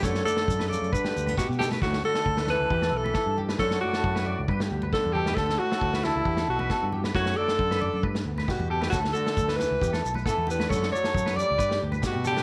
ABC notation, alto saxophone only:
X:1
M:4/4
L:1/8
Q:1/4=135
K:D
V:1 name="Alto saxophone"
A A2 A B2 F G | F A2 B2 A2 z | A F3 z2 A G | A F2 E2 F2 z |
F A3 z2 F G | F A2 B2 z A B | A c2 d2 z F G |]